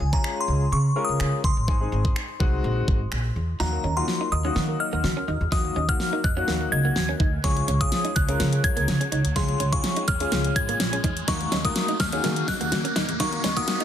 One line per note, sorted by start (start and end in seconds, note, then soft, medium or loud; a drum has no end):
0.00 0.17 C#2 medium
0.00 0.14 G#5 medium
0.13 0.62 G#3 medium
0.13 0.62 C#4 medium
0.13 0.63 F4 medium
0.13 0.63 G#4 medium
0.13 0.38 A#5 medium
0.13 kick medium
0.24 finger snap loud
0.41 0.73 C6 medium
0.48 0.65 C#2 medium
0.72 0.89 C#3 loud
0.72 1.02 C#6 loud
0.96 1.39 G#3 medium
0.96 1.39 C#4 medium
0.96 1.39 F4 medium
0.96 1.39 A#4 medium
1.05 1.34 D#6 loud
1.09 1.17 C#2 medium
1.20 1.29 C#3 medium
1.20 finger snap loud
1.44 1.53 C#2 medium
1.44 3.08 C6 medium
1.44 kick medium
1.57 1.65 A1 medium
1.68 1.85 G#1 loud
1.68 1.75 G#3 medium
1.68 1.76 C4 medium
1.68 1.76 D#4 medium
1.68 1.76 G#4 medium
1.68 kick loud
1.81 2.16 G#3 medium
1.81 2.16 C4 medium
1.81 2.16 D#4 medium
1.81 2.16 G#4 medium
1.92 2.09 G#1 loud
2.05 kick medium
2.16 finger snap loud
2.40 2.57 C2 loud
2.40 2.97 G#3 medium
2.40 2.97 C4 medium
2.40 2.97 D#4 medium
2.40 2.98 F#4 loud
2.40 kick medium
2.64 2.81 A#1 medium
2.88 3.05 G#1 medium
2.88 kick medium
3.12 3.29 A#1 medium
3.12 finger snap loud
3.36 3.53 E2 medium
3.60 3.77 D#2 medium
3.60 3.81 F#3 medium
3.60 3.81 A#3 medium
3.60 3.69 D#4 medium
3.60 3.82 D#4 medium
3.60 3.71 F#4 medium
3.60 3.82 F#4 medium
3.60 3.98 A#5 medium
3.60 snare medium
3.60 riser medium
3.73 3.82 A#4 medium
3.73 muted clean electric guitar stroke soft
3.84 4.01 D#2 medium
3.84 3.93 C#4 medium
3.84 3.95 D#5 medium
3.97 4.25 F#3 medium
3.97 4.25 A#3 medium
3.97 4.25 D#4 medium
3.97 4.25 F4 medium
3.97 4.06 F#5 medium
3.97 4.33 C6 medium
4.08 4.19 F#4 medium
4.08 snare medium
4.21 4.29 D#4 medium
4.21 4.30 A#4 medium
4.32 4.49 D#2 loud
4.32 4.43 D#5 medium
4.32 4.77 D#6 medium
4.32 muted clean electric guitar stroke soft
4.45 5.01 F#3 medium
4.45 5.01 A#3 medium
4.45 4.53 C#4 medium
4.45 5.01 D#4 medium
4.45 5.01 F#4 medium
4.56 4.72 D#3 loud
4.56 4.65 A#3 medium
4.56 4.67 F#4 medium
4.56 snare medium
4.69 4.78 A#4 medium
4.69 muted clean electric guitar stroke soft
4.80 4.91 D#5 medium
4.80 5.48 F6 loud
4.93 5.00 D#2 medium
4.93 5.01 A#3 medium
4.93 5.02 F#5 medium
5.04 5.13 D#3 loud
5.04 5.15 F#4 medium
5.04 muted clean electric guitar stroke soft
5.04 snare medium
5.17 5.25 C#4 medium
5.17 5.26 A#4 medium
5.28 5.37 D#2 medium
5.28 5.37 D#4 medium
5.28 5.39 D#5 medium
5.41 5.49 E2 medium
5.52 5.73 F#3 medium
5.52 5.73 A#3 medium
5.52 5.74 D#4 medium
5.52 5.61 D#4 medium
5.52 5.63 F#4 medium
5.52 5.74 F#4 medium
5.52 5.90 D#6 loud
5.52 kick loud
5.52 snare medium
5.64 5.74 A#4 medium
5.64 muted clean electric guitar stroke soft
5.76 5.93 D#2 medium
5.76 5.85 C#4 medium
5.76 5.87 D#5 medium
5.88 6.17 F#3 medium
5.88 6.17 A#3 medium
5.88 6.17 D#4 medium
5.88 6.17 F#4 medium
5.88 5.98 F#5 medium
5.88 6.25 F6 loud
5.88 kick medium
6.00 6.11 F#4 medium
6.00 snare medium
6.13 6.21 D#4 medium
6.13 6.22 A#4 medium
6.24 6.41 F2 medium
6.24 6.35 D#5 medium
6.24 6.73 F#6 loud
6.24 muted clean electric guitar stroke soft
6.24 kick loud
6.36 6.93 F#3 medium
6.36 6.93 A#3 medium
6.36 6.45 C#4 medium
6.36 6.93 D#4 medium
6.36 6.93 F#4 medium
6.48 6.65 D#2 medium
6.48 6.57 A#3 medium
6.48 6.59 F#4 medium
6.48 snare medium
6.61 6.70 A#4 medium
6.61 muted clean electric guitar stroke soft
6.72 6.89 C#2 medium
6.72 6.83 D#5 medium
6.72 7.40 G#6 loud
6.85 6.93 A#3 medium
6.85 6.94 F#5 medium
6.96 7.13 D#2 medium
6.96 7.07 F#4 medium
6.96 muted clean electric guitar stroke soft
6.96 snare medium
7.09 7.17 C#4 medium
7.09 7.18 A#4 medium
7.20 7.37 D2 medium
7.20 7.29 D#4 medium
7.20 7.31 D#5 medium
7.20 kick medium
7.44 7.61 C#2 loud
7.44 7.65 G#3 medium
7.44 7.53 C#4 medium
7.44 7.65 C#4 medium
7.44 7.55 F4 medium
7.44 7.66 F4 medium
7.44 7.66 G#4 medium
7.44 7.82 C#6 loud
7.44 kick loud
7.44 snare medium
7.44 closed hi-hat loud
7.57 7.66 G#4 medium
7.57 muted clean electric guitar stroke soft
7.57 closed hi-hat soft
7.68 7.85 C#2 medium
7.68 7.77 C#4 medium
7.68 7.79 C#5 medium
7.68 closed hi-hat medium
7.81 8.09 G#3 medium
7.81 8.09 C#4 medium
7.81 8.09 F4 medium
7.81 8.09 G#4 medium
7.81 7.90 F5 medium
7.81 8.17 D#6 loud
7.81 kick medium
7.81 closed hi-hat medium
7.92 8.03 F4 medium
7.92 snare medium
7.92 closed hi-hat medium
8.05 8.12 D#4 medium
8.05 8.14 G#4 medium
8.05 closed hi-hat soft
8.16 8.33 C#2 loud
8.16 8.27 C#5 medium
8.16 8.65 F#6 loud
8.16 muted clean electric guitar stroke soft
8.16 kick loud
8.16 closed hi-hat medium
8.28 8.85 G#3 medium
8.28 8.36 C#4 medium
8.28 8.85 C#4 medium
8.28 8.85 F4 medium
8.28 8.85 A#4 medium
8.28 closed hi-hat medium
8.40 8.57 C#3 loud
8.40 8.49 A#3 medium
8.40 8.51 F4 medium
8.40 snare medium
8.40 closed hi-hat medium
8.53 8.62 G#4 medium
8.53 muted clean electric guitar stroke soft
8.53 closed hi-hat soft
8.64 8.75 C#5 medium
8.64 9.32 G#6 loud
8.64 kick medium
8.64 closed hi-hat medium
8.77 8.85 C#2 medium
8.77 8.84 A#3 medium
8.77 8.86 F5 medium
8.77 closed hi-hat medium
8.88 8.97 C#3 loud
8.88 8.99 F4 medium
8.88 muted clean electric guitar stroke soft
8.88 snare medium
8.88 closed hi-hat medium
9.01 9.08 C#4 medium
9.01 9.10 G#4 medium
9.01 closed hi-hat medium
9.12 9.21 C#2 medium
9.12 9.21 D#4 medium
9.12 9.23 C#5 medium
9.12 closed hi-hat medium
9.25 9.33 D2 medium
9.25 closed hi-hat medium
9.36 9.53 C#2 loud
9.36 9.57 G#3 medium
9.36 9.45 C#4 medium
9.36 9.57 C#4 medium
9.36 9.47 F4 medium
9.36 9.58 F4 medium
9.36 9.58 G#4 medium
9.36 9.74 C6 medium
9.36 kick loud
9.36 snare medium
9.36 closed hi-hat loud
9.49 9.58 G#4 medium
9.49 muted clean electric guitar stroke soft
9.49 closed hi-hat soft
9.60 9.77 C#2 medium
9.60 9.69 C#4 medium
9.60 9.71 C#5 medium
9.60 closed hi-hat medium
9.72 10.01 G#3 medium
9.72 10.01 C#4 medium
9.72 10.01 F4 medium
9.72 10.01 G#4 medium
9.72 9.82 F5 medium
9.72 10.05 C#6 medium
9.72 kick medium
9.72 closed hi-hat soft
9.84 9.95 F4 medium
9.84 snare medium
9.84 closed hi-hat medium
9.96 10.05 D#4 medium
9.96 10.06 G#4 medium
9.96 closed hi-hat soft
10.08 10.25 D#2 medium
10.08 10.19 C#5 medium
10.08 10.53 F6 loud
10.08 muted clean electric guitar stroke soft
10.08 kick loud
10.08 closed hi-hat medium
10.20 10.77 G#3 medium
10.20 10.77 C#4 medium
10.20 10.29 C#4 medium
10.20 10.77 F4 medium
10.20 10.77 G#4 medium
10.20 closed hi-hat medium
10.32 10.49 C#2 loud
10.32 10.41 A#3 medium
10.32 10.43 F4 medium
10.32 snare medium
10.32 closed hi-hat medium
10.44 10.54 G#4 medium
10.44 muted clean electric guitar stroke soft
10.44 closed hi-hat soft
10.56 10.73 G#1 medium
10.56 10.67 C#5 medium
10.56 11.30 G#6 loud
10.56 kick medium
10.56 closed hi-hat medium
10.69 10.77 A#3 medium
10.69 10.78 F5 medium
10.69 closed hi-hat medium
10.80 10.96 A#1 medium
10.80 10.91 F4 medium
10.80 muted clean electric guitar stroke soft
10.80 snare medium
10.80 closed hi-hat medium
10.93 11.01 C#4 medium
10.93 11.02 G#4 medium
10.93 closed hi-hat medium
11.04 11.21 E2 loud
11.04 11.13 D#4 medium
11.04 11.15 C#5 medium
11.04 kick medium
11.04 closed hi-hat medium
11.17 closed hi-hat medium
11.28 11.45 D#2 loud
11.28 11.49 A#3 medium
11.28 11.50 D#4 medium
11.28 11.37 D#4 medium
11.28 11.39 F#4 medium
11.28 11.50 F#4 medium
11.28 11.50 A#4 medium
11.28 11.62 C#6 loud
11.28 kick loud
11.28 snare medium
11.28 closed hi-hat loud
11.41 11.50 A#4 medium
11.41 muted clean electric guitar stroke soft
11.41 closed hi-hat soft
11.52 11.69 D#2 medium
11.52 11.61 C#4 medium
11.52 11.63 D#5 medium
11.52 snare medium
11.52 closed hi-hat medium
11.64 11.93 A#3 medium
11.64 11.93 D#4 medium
11.64 11.93 F#4 medium
11.64 11.93 A#4 medium
11.64 11.74 F#5 medium
11.64 11.98 D#6 medium
11.64 kick medium
11.64 closed hi-hat medium
11.76 11.87 F#4 medium
11.76 snare medium
11.76 closed hi-hat medium
11.88 11.97 D#4 medium
11.88 11.98 A#4 medium
11.88 closed hi-hat soft
12.00 12.17 D#2 medium
12.00 12.11 D#5 medium
12.00 12.50 F6 medium
12.00 muted clean electric guitar stroke soft
12.00 kick loud
12.00 snare medium
12.00 closed hi-hat medium
12.12 12.69 A#3 medium
12.12 12.21 C#4 medium
12.12 12.69 D#4 medium
12.12 12.69 F#4 medium
12.12 12.69 G#4 medium
12.12 closed hi-hat medium
12.24 12.41 D#3 loud
12.24 12.33 A#3 medium
12.24 12.35 F#4 medium
12.24 snare medium
12.24 closed hi-hat medium
12.36 12.46 A#4 medium
12.36 muted clean electric guitar stroke soft
12.36 closed hi-hat soft
12.48 12.59 D#5 medium
12.48 13.16 F#6 loud
12.48 kick medium
12.48 snare medium
12.48 closed hi-hat medium
12.61 12.68 D#2 medium
12.61 12.69 A#3 medium
12.61 12.70 F#5 medium
12.61 closed hi-hat medium
12.72 12.81 D#3 loud
12.72 12.83 F#4 medium
12.72 muted clean electric guitar stroke soft
12.72 snare medium
12.72 closed hi-hat medium
12.85 12.92 C#4 medium
12.85 12.94 A#4 medium
12.85 closed hi-hat soft
12.96 13.05 D#2 medium
12.96 13.05 D#4 medium
12.96 13.07 D#5 medium
12.96 snare medium
12.96 closed hi-hat medium
13.09 13.17 E2 medium
13.09 closed hi-hat medium
13.20 13.37 D#2 loud
13.20 13.41 A#3 medium
13.20 13.41 D#4 medium
13.20 13.29 D#4 medium
13.20 13.31 F#4 medium
13.20 13.42 F#4 medium
13.20 13.42 A#4 medium
13.20 13.58 C#6 loud
13.20 kick loud
13.20 snare medium
13.20 closed hi-hat loud
13.32 13.42 A#4 medium
13.32 muted clean electric guitar stroke soft
13.32 closed hi-hat soft
13.44 13.61 D#2 loud
13.44 13.53 C#4 medium
13.44 13.55 D#5 medium
13.44 snare medium
13.44 closed hi-hat medium
13.56 13.84 A#3 medium
13.56 13.84 D#4 medium
13.56 13.84 F#4 medium
13.56 13.84 A#4 medium
13.56 13.66 F#5 medium
13.56 13.84 D#6 medium
13.56 kick medium
13.56 closed hi-hat medium
13.68 13.79 F#4 medium
13.68 snare medium
13.68 closed hi-hat medium
13.80 13.84 D#4 medium
13.80 13.84 A#4 medium
13.80 closed hi-hat soft